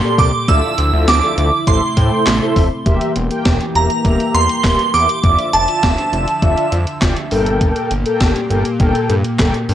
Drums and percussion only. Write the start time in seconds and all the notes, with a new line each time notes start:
0.18 kick, open hi-hat
0.48 kick, closed hi-hat
0.78 closed hi-hat
1.08 snare, closed hi-hat
1.38 closed hi-hat
1.67 kick, closed hi-hat
1.97 kick, closed hi-hat
2.27 snare, clap, closed hi-hat
2.56 kick, open hi-hat
2.86 kick, closed hi-hat
3.01 closed hi-hat
3.16 closed hi-hat
3.31 closed hi-hat
3.45 kick, snare, closed hi-hat
3.61 closed hi-hat
3.75 closed hi-hat
3.90 closed hi-hat
4.05 kick, closed hi-hat
4.20 closed hi-hat
4.35 closed hi-hat
4.49 closed hi-hat
4.64 kick, snare, clap, closed hi-hat
4.79 closed hi-hat
4.94 open hi-hat
5.09 closed hi-hat
5.24 kick, closed hi-hat
5.39 closed hi-hat
5.53 closed hi-hat
5.68 closed hi-hat
5.83 kick, snare, closed hi-hat
5.98 closed hi-hat
6.13 closed hi-hat
6.28 closed hi-hat
6.42 kick, closed hi-hat
6.57 closed hi-hat
6.72 closed hi-hat
6.87 closed hi-hat
7.02 kick, snare, clap, closed hi-hat
7.17 closed hi-hat
7.31 open hi-hat
7.46 closed hi-hat
7.61 kick, closed hi-hat
7.76 closed hi-hat
7.91 closed hi-hat
8.06 closed hi-hat
8.20 kick, snare, closed hi-hat
8.36 closed hi-hat
8.51 closed hi-hat
8.65 closed hi-hat
8.80 kick, closed hi-hat
8.95 closed hi-hat
9.10 closed hi-hat
9.24 closed hi-hat
9.39 kick, snare, clap, closed hi-hat
9.54 closed hi-hat
9.69 open hi-hat